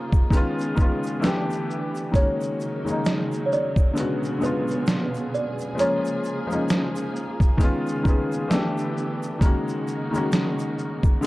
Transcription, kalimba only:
0.00 1.20 C#5 medium
2.15 3.08 C#5 loud
3.06 3.24 D#5 loud
3.46 3.51 C#5 medium
3.53 4.38 D5 medium
4.43 5.36 B4 medium
5.34 5.80 D5 medium
5.80 8.47 C#5 medium

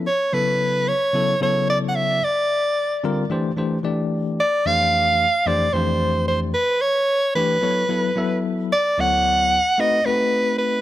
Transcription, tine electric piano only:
0.32 0.92 C#3 medium
0.32 0.92 F#3 medium
0.32 0.92 B3 medium
0.32 0.92 E4 medium
0.32 0.92 A4 medium
1.13 1.33 C#3 medium
1.13 1.34 F#3 medium
1.13 1.34 B3 medium
1.13 1.34 E4 medium
1.13 1.35 A4 medium
1.41 2.20 C#3 medium
1.41 2.20 F#3 medium
1.41 2.20 B3 medium
1.41 2.20 E4 medium
1.41 2.20 A4 medium
3.04 3.23 D3 medium
3.04 3.23 G3 medium
3.04 3.23 C4 medium
3.04 3.24 F4 medium
3.04 3.24 A#4 loud
3.30 3.50 E3 medium
3.30 3.50 A3 medium
3.30 3.50 D4 medium
3.30 3.51 G4 medium
3.30 3.51 C5 medium
3.57 3.77 E3 medium
3.57 3.77 A3 medium
3.57 3.77 D4 medium
3.57 3.78 G4 medium
3.57 3.78 C5 medium
3.83 4.38 E3 medium
3.83 4.38 A3 medium
3.83 4.38 D4 medium
3.83 4.39 G4 medium
3.83 4.39 D5 medium
4.66 5.25 F2 medium
4.66 5.25 E3 medium
4.66 5.25 A3 medium
4.66 5.25 D4 medium
4.66 5.25 G4 medium
4.66 5.25 C5 medium
5.46 5.66 F2 medium
5.46 5.67 E3 medium
5.46 5.67 A3 medium
5.46 5.67 D4 medium
5.46 5.67 G4 medium
5.46 5.67 C5 medium
5.74 6.53 F2 medium
5.74 6.53 E3 medium
5.74 6.53 A3 medium
5.74 6.53 D4 medium
5.74 6.53 G4 medium
5.74 6.54 C5 medium
7.35 7.56 E3 medium
7.35 7.56 A3 medium
7.35 7.56 D4 medium
7.35 7.56 G4 medium
7.35 7.56 B4 medium
7.61 7.82 F#3 medium
7.61 7.82 B3 medium
7.61 7.83 E4 medium
7.61 7.83 A4 medium
7.61 7.83 C#5 medium
7.89 8.09 F#3 medium
7.89 8.10 B3 medium
7.89 8.10 E4 medium
7.89 8.10 A4 medium
7.89 8.10 B4 medium
8.16 8.71 F#3 medium
8.16 8.71 B3 medium
8.16 8.71 E4 medium
8.16 8.72 A4 medium
8.16 8.72 E5 medium
8.98 9.57 D2 medium
8.98 9.58 F#3 medium
8.98 9.58 B3 medium
8.98 9.58 E4 medium
8.98 9.58 A4 medium
8.98 9.58 C#5 medium
9.78 9.99 A3 medium
9.78 9.99 C4 medium
9.78 9.99 D#4 medium
9.78 10.00 F#4 medium
9.78 10.00 B4 medium
10.06 10.81 A3 medium
10.06 10.81 C4 medium
10.06 10.81 D#4 medium
10.06 10.81 F#4 medium
10.06 10.81 B4 medium

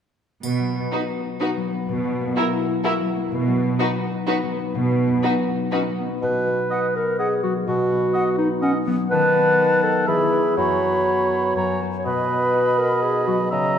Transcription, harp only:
0.44 1.87 B2 soft
0.59 1.56 F#3 soft
0.76 1.39 B3 soft
0.92 1.24 D#4 soft
1.08 2.52 F#4 soft
1.25 1.91 D#4 soft
1.41 1.71 B3 soft
1.57 2.04 F#3 soft
1.73 1.90 B3 soft
1.89 3.31 B2 soft
2.05 2.99 F#3 soft
2.21 2.83 A#3 soft
2.37 2.67 E4 soft
2.53 3.94 F#4 soft
2.68 3.34 E4 soft
2.85 3.15 A#3 soft
3.00 3.46 F#3 soft
3.16 3.34 A#3 soft
3.32 4.74 B2 soft
3.47 4.42 F#3 soft
3.64 4.26 B3 soft
3.79 4.10 D#4 soft
3.95 5.38 F#4 soft
4.11 5.22 D#4 soft
4.27 4.58 B3 soft
4.43 4.90 F#3 soft
4.59 5.06 B3 soft
4.75 6.21 B2 soft
4.91 5.88 F#3 soft
5.07 5.71 B3 soft
5.23 5.55 D#4 soft
5.40 6.71 F#4 soft
5.56 7.19 D#4 soft
5.72 6.05 B3 soft
5.89 7.42 F#3 soft
6.06 6.46 B3 soft
6.22 7.66 B2 soft
6.47 7.90 B3 soft
6.72 8.13 F#4 soft
6.96 8.37 B4 soft
7.20 8.61 D#4 soft
7.43 8.86 F#3 soft
7.67 9.13 B2 soft
7.91 9.34 B3 soft
8.14 10.10 F#4 soft
8.38 9.82 B4 soft
8.62 10.10 D#4 soft
8.87 10.10 F#3 soft
9.11 10.10 D#3 soft
9.35 10.80 B3 soft
9.59 10.10 A4 soft
9.83 10.31 B4 soft
10.08 10.59 E3 soft
10.32 10.59 E4 soft
10.32 11.30 B4 soft
10.57 11.55 F#2 soft
10.82 11.58 B3 soft
11.06 11.80 F#4 soft
11.31 11.58 B4 soft
11.56 12.08 F#2 soft
11.81 12.07 C#4 soft
11.81 12.53 F#4 soft
12.05 13.54 B2 soft
12.30 13.54 B3 soft
12.54 13.79 F#4 soft
12.78 13.54 B4 soft
13.02 13.54 D#4 soft
13.27 13.79 F#3 soft
13.52 13.79 C#3 soft

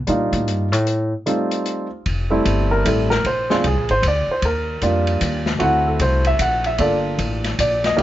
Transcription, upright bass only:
0.08 0.32 A#2 medium
0.32 0.48 A2 medium
0.48 0.72 G2 medium
0.72 1.12 A2 medium
2.06 2.44 F1 medium
2.45 2.83 G1 medium
2.85 3.23 A1 medium
3.24 3.62 A#1 medium
3.64 3.76 C2 medium
3.76 3.89 A#1 soft
3.90 4.02 G#1 medium
4.02 4.26 D2 medium
4.27 muted upright bass stroke soft
4.42 4.81 D#2 medium
4.82 5.20 F2 medium
5.21 5.60 D#2 medium
5.60 5.99 D2 medium
6.00 6.38 C2 medium
6.39 6.78 A#1 medium
6.79 7.18 G1 medium
7.18 7.57 A1 medium
7.59 7.97 A#1 medium
7.98 8.03 C2 medium

